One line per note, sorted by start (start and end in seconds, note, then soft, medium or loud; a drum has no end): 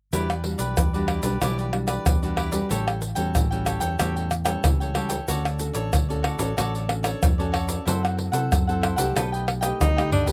0.13 0.54 E2 loud
0.13 0.74 E3 medium
0.13 0.32 G3 medium
0.13 0.32 D4 soft
0.13 0.28 E4 medium
0.13 0.32 F#4 medium
0.13 0.28 G4 medium
0.13 0.28 B4 medium
0.13 0.28 D5 medium
0.13 pandeiro medium
0.13 shaker medium
0.13 surdo medium
0.29 0.43 G4 soft
0.29 0.43 B4 soft
0.29 0.44 D5 soft
0.29 pandeiro soft
0.29 tamborim medium
0.29 shaker soft
0.44 0.75 G3 medium
0.44 0.75 D4 soft
0.44 0.75 F#4 medium
0.44 muted cavaquinho stroke soft
0.44 pandeiro medium
0.58 0.74 B1 medium
0.58 0.92 G4 medium
0.58 0.91 B4 medium
0.58 0.91 D5 medium
0.58 pandeiro medium
0.58 shaker medium
0.77 1.18 E2 loud
0.77 1.38 B2 medium
0.77 pandeiro medium
0.77 tamborim medium
0.77 shaker medium
0.77 surdo loud
0.93 1.21 G3 medium
0.93 1.21 D4 medium
0.93 1.21 F#4 medium
0.93 1.07 G4 soft
0.93 1.07 B4 soft
0.93 1.08 D5 soft
0.93 pandeiro soft
0.93 shaker soft
1.07 1.23 E4 soft
1.07 1.24 G4 medium
1.07 1.22 B4 medium
1.07 1.21 D5 medium
1.07 pandeiro medium
1.07 tamborim medium
1.22 1.38 B1 medium
1.22 1.35 G3 medium
1.22 1.36 D4 medium
1.22 1.36 F#4 medium
1.22 1.40 G4 medium
1.22 1.39 B4 medium
1.22 1.39 D5 medium
1.22 pandeiro medium
1.22 shaker medium
1.41 1.96 B1 loud
1.41 2.03 E3 medium
1.41 1.69 G3 medium
1.41 1.69 D4 medium
1.41 1.56 E4 medium
1.41 1.69 F#4 medium
1.41 1.57 G4 medium
1.41 1.57 B4 medium
1.41 1.57 D5 medium
1.41 pandeiro medium
1.41 tamborim medium
1.41 shaker medium
1.41 surdo medium
1.58 1.72 G4 soft
1.58 1.72 B4 soft
1.58 1.73 D5 medium
1.58 pandeiro soft
1.58 shaker soft
1.72 2.16 G3 medium
1.72 2.17 D4 medium
1.72 2.17 F#4 medium
1.72 muted cavaquinho stroke soft
1.72 pandeiro medium
1.72 tamborim medium
1.87 2.21 G4 medium
1.87 2.20 B4 medium
1.87 2.19 D5 medium
1.87 pandeiro medium
1.87 tamborim medium
1.87 shaker medium
2.06 2.61 E2 medium
2.06 2.67 B2 medium
2.06 pandeiro medium
2.06 tamborim medium
2.06 shaker medium
2.06 surdo loud
2.22 2.50 G3 medium
2.22 2.50 D4 medium
2.22 2.50 F#4 medium
2.22 2.36 G4 soft
2.22 2.37 B4 soft
2.22 2.37 D5 medium
2.22 pandeiro soft
2.22 shaker soft
2.36 2.52 E4 medium
2.36 2.53 G4 medium
2.36 2.52 B4 medium
2.36 2.50 D5 medium
2.36 pandeiro medium
2.36 tamborim medium
2.51 2.97 G3 medium
2.51 2.97 C#4 medium
2.51 2.97 F#4 medium
2.51 2.68 G4 soft
2.51 2.69 B4 soft
2.51 2.68 D5 soft
2.51 pandeiro medium
2.51 shaker medium
2.69 3.12 A1 loud
2.69 3.32 A2 medium
2.69 2.85 G4 medium
2.69 2.85 A4 medium
2.69 2.86 C#5 medium
2.69 2.86 G5 medium
2.69 pandeiro medium
2.69 shaker medium
2.69 surdo medium
2.87 3.00 A4 soft
2.87 3.01 G5 medium
2.87 pandeiro soft
2.87 tamborim medium
2.87 shaker soft
3.01 muted cavaquinho stroke soft
3.01 pandeiro medium
3.01 shaker medium
3.15 3.32 E2 medium
3.15 3.45 G3 medium
3.15 3.45 C#4 medium
3.15 3.45 F#4 medium
3.15 3.49 A4 medium
3.15 3.49 C#5 medium
3.15 3.48 G5 medium
3.15 pandeiro medium
3.15 shaker medium
3.35 3.77 A1 loud
3.35 3.96 E3 medium
3.35 pandeiro medium
3.35 tamborim medium
3.35 shaker medium
3.35 surdo medium
3.51 3.95 G3 medium
3.51 3.95 C#4 medium
3.51 3.95 F#4 medium
3.51 3.65 A4 soft
3.51 3.65 C#5 medium
3.51 3.66 G5 medium
3.51 pandeiro soft
3.51 shaker soft
3.65 3.81 G4 soft
3.65 3.81 A4 medium
3.65 3.80 C#5 medium
3.65 3.79 G5 medium
3.65 pandeiro medium
3.65 tamborim medium
3.65 shaker medium
3.80 3.96 E2 medium
3.80 3.98 A4 medium
3.80 3.97 C#5 medium
3.80 3.97 G5 medium
3.80 pandeiro medium
3.80 shaker loud
3.99 4.55 E2 loud
3.99 4.61 A2 medium
3.99 4.30 G3 medium
3.99 4.30 C#4 medium
3.99 4.30 F#4 medium
3.99 4.14 G4 medium
3.99 4.15 A4 medium
3.99 4.15 C#5 medium
3.99 4.15 G5 medium
3.99 pandeiro medium
3.99 tamborim medium
3.99 shaker medium
3.99 surdo medium
4.16 4.30 A4 soft
4.16 4.30 C#5 soft
4.16 4.30 G5 soft
4.16 pandeiro soft
4.16 shaker soft
4.30 muted cavaquinho stroke soft
4.30 pandeiro medium
4.30 tamborim medium
4.30 shaker medium
4.45 4.90 G3 medium
4.45 4.90 C#4 medium
4.45 4.79 A4 medium
4.45 4.78 C#5 medium
4.45 4.77 G5 medium
4.45 pandeiro medium
4.45 tamborim medium
4.45 shaker medium
4.64 5.19 C#2 medium
4.64 5.25 E3 medium
4.64 pandeiro medium
4.64 tamborim medium
4.64 shaker medium
4.64 surdo loud
4.80 4.94 A4 soft
4.80 4.95 C#5 medium
4.80 4.95 G5 soft
4.80 pandeiro soft
4.80 shaker soft
4.94 5.15 G3 medium
4.94 5.15 C#4 medium
4.94 5.15 F#4 medium
4.94 5.10 G4 medium
4.94 5.10 A4 medium
4.94 5.09 C#5 medium
4.94 5.08 G5 medium
4.94 pandeiro medium
4.94 tamborim medium
5.09 5.27 A4 soft
5.09 5.26 C#5 soft
5.09 5.26 G5 medium
5.09 pandeiro medium
5.09 shaker medium
5.28 5.70 D2 loud
5.28 5.90 D3 medium
5.28 5.48 C#4 medium
5.28 5.43 F#4 medium
5.28 5.48 F#4 medium
5.28 5.43 A4 medium
5.28 5.48 A4 medium
5.28 5.44 C#5 medium
5.28 5.43 D5 medium
5.28 pandeiro medium
5.28 shaker medium
5.28 surdo medium
5.44 5.58 A4 soft
5.44 5.59 C#5 soft
5.44 5.59 D5 soft
5.44 pandeiro soft
5.44 tamborim medium
5.44 shaker soft
5.59 5.91 C#4 soft
5.59 5.91 F#4 medium
5.59 5.91 A4 medium
5.59 muted cavaquinho stroke soft
5.59 pandeiro medium
5.59 shaker medium
5.73 5.89 A1 loud
5.73 6.07 A4 medium
5.73 6.07 C#5 medium
5.73 6.06 D5 medium
5.73 pandeiro medium
5.73 shaker medium
5.93 6.34 D2 medium
5.93 6.54 A2 medium
5.93 pandeiro medium
5.93 tamborim medium
5.93 shaker medium
5.93 surdo loud
6.09 6.37 C#4 medium
6.09 6.37 F#4 medium
6.09 6.37 A4 medium
6.09 6.23 A4 soft
6.09 6.23 C#5 soft
6.09 6.24 D5 soft
6.09 pandeiro soft
6.09 shaker soft
6.23 6.39 F#4 medium
6.23 6.40 A4 medium
6.23 6.38 C#5 medium
6.23 6.37 D5 medium
6.23 pandeiro medium
6.23 tamborim medium
6.38 6.54 A1 medium
6.38 6.51 C#4 medium
6.38 6.52 F#4 medium
6.38 6.52 A4 medium
6.38 6.56 A4 medium
6.38 6.56 C#5 medium
6.38 6.55 D5 medium
6.38 pandeiro medium
6.38 shaker loud
6.57 7.13 A1 loud
6.57 7.19 D3 medium
6.57 6.77 C#4 medium
6.57 6.72 F#4 medium
6.57 6.77 F#4 medium
6.57 6.73 A4 medium
6.57 6.77 A4 medium
6.57 6.73 C#5 medium
6.57 6.73 D5 medium
6.57 pandeiro medium
6.57 tamborim medium
6.57 shaker medium
6.57 surdo medium
6.74 6.88 A4 soft
6.74 6.88 C#5 soft
6.74 6.89 D5 soft
6.74 pandeiro soft
6.74 shaker soft
6.89 7.33 C#4 medium
6.89 7.33 F#4 medium
6.89 7.33 A4 medium
6.89 muted cavaquinho stroke soft
6.89 pandeiro medium
6.89 tamborim medium
7.03 7.37 A4 medium
7.03 7.36 C#5 medium
7.03 7.36 D5 medium
7.03 pandeiro medium
7.03 tamborim medium
7.03 shaker medium
7.22 7.77 F2 medium
7.22 7.83 A2 medium
7.22 pandeiro medium
7.22 tamborim medium
7.22 shaker medium
7.22 surdo loud
7.38 7.85 C#4 medium
7.38 7.85 F#4 medium
7.38 7.85 A4 medium
7.38 7.52 A4 soft
7.38 7.52 C#5 soft
7.38 7.53 D5 medium
7.38 pandeiro soft
7.38 shaker soft
7.52 7.68 F#4 medium
7.52 7.68 A4 medium
7.52 7.67 C#5 medium
7.52 7.66 D5 medium
7.52 pandeiro medium
7.52 tamborim medium
7.67 7.85 A4 soft
7.67 7.84 C#5 medium
7.67 7.84 D5 medium
7.67 pandeiro medium
7.67 shaker medium
7.85 8.28 F#2 loud
7.85 8.49 F#3 medium
7.85 8.31 C4 medium
7.85 8.01 E4 medium
7.85 8.31 E4 medium
7.85 8.02 A4 medium
7.85 8.31 A4 medium
7.85 8.02 C5 medium
7.85 8.02 F#5 medium
7.85 pandeiro medium
7.85 shaker medium
7.85 surdo medium
8.03 8.17 A4 soft
8.03 8.17 C5 soft
8.03 8.17 F#5 soft
8.03 pandeiro soft
8.03 tamborim medium
8.03 shaker soft
8.17 muted cavaquinho stroke soft
8.17 pandeiro medium
8.32 8.48 C3 loud
8.32 8.61 C4 medium
8.32 8.62 E4 medium
8.32 8.66 A4 medium
8.32 8.62 A4 medium
8.32 8.65 C5 medium
8.32 8.65 F#5 medium
8.32 pandeiro medium
8.32 shaker medium
8.51 8.93 F#2 medium
8.51 9.13 F#3 medium
8.51 pandeiro medium
8.51 tamborim medium
8.51 shaker medium
8.51 surdo loud
8.67 8.95 C4 medium
8.67 8.95 E4 medium
8.67 8.96 A4 medium
8.67 8.81 A4 soft
8.67 8.82 C5 soft
8.67 8.82 F#5 medium
8.67 pandeiro soft
8.67 shaker soft
8.82 8.98 E4 soft
8.82 8.97 A4 soft
8.82 8.97 C5 medium
8.82 8.95 F#5 medium
8.82 pandeiro medium
8.82 tamborim medium
8.96 9.12 C2 medium
8.96 9.59 A3 medium
8.96 9.59 D#4 medium
8.96 9.59 G4 medium
8.96 9.14 A4 soft
8.96 9.14 C5 medium
8.96 9.13 F#5 medium
8.96 pandeiro medium
8.96 shaker medium
9.15 9.71 B1 loud
9.15 9.78 B2 medium
9.15 9.31 A4 medium
9.15 9.31 B4 medium
9.15 9.32 D#5 medium
9.15 9.31 G5 medium
9.15 pandeiro medium
9.15 tamborim medium
9.15 shaker medium
9.15 surdo medium
9.32 9.46 B4 soft
9.32 9.47 D#5 soft
9.32 9.47 G5 soft
9.32 pandeiro soft
9.32 shaker soft
9.47 muted cavaquinho stroke soft
9.47 pandeiro medium
9.47 tamborim medium
9.61 9.91 A3 medium
9.61 9.91 D#4 medium
9.61 9.91 G4 medium
9.61 9.95 B4 soft
9.61 9.95 D#5 medium
9.61 9.94 G5 medium
9.61 pandeiro medium
9.61 tamborim medium
9.61 shaker medium
9.80 10.32 D2 medium
9.80 10.11 D#4 medium
9.80 pandeiro medium
9.80 tamborim medium
9.80 shaker medium
9.80 surdo loud
9.96 10.25 A3 medium
9.96 10.25 D#4 medium
9.96 10.25 G4 medium
9.96 10.11 B4 soft
9.96 10.12 D#5 soft
9.96 10.12 G5 medium
9.96 pandeiro soft
9.96 tamborim medium
9.96 shaker soft
10.11 10.28 D4 medium
10.11 10.27 A4 medium
10.11 10.27 B4 medium
10.11 10.26 D#5 medium
10.11 10.25 G5 medium
10.11 surdo medium
10.11 pandeiro medium
10.26 10.32 B3 medium
10.26 10.32 D4 medium
10.26 10.32 G4 medium
10.26 10.32 B4 soft
10.26 10.32 D#5 soft
10.26 10.32 G5 medium
10.26 pandeiro medium
10.26 shaker medium
10.26 surdo medium